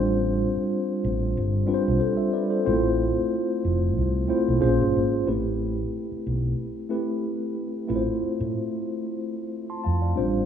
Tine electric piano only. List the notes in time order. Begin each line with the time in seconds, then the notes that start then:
Already playing: G3 C4 D4 F4 C5
1.66 G3 C4 D4 F4 B4
1.74 C5
2.00 A4 C5
2.17 C5 E5
2.33 B4 D5
2.50 A4 C5
2.65 G#3 C4 E4 F4 C5
2.71 A3
4.28 A3 C4 E4 F4 C5
4.60 A#3 C#4 F4 G#4 C5
5.26 A3 C4 E4 G4 B4
6.89 A3 C4 E4 G4 B4
7.87 A3 C4 E4 F4 B4
7.96 C5
9.70 A5 C6
9.84 F5 A5
10.02 D5 F5
10.16 G3 C4 D4 F4 C5